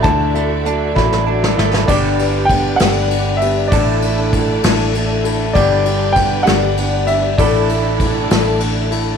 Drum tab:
CC |------------|x-----------|------------|------------|
RD |------------|--x-x-x-x-x-|x-x-x-x-x-x-|x-x-x-x-x-x-|
HH |x-x-x-------|------------|------------|------------|
SD |------oo-ooo|------o-----|------o-----|------o-----|
BD |o-----o-----|o---o-------|o---o-------|o---o-------|

CC |------------|
RD |x-x-x-x-x-x-|
HH |------------|
SD |------o-----|
BD |o---o-------|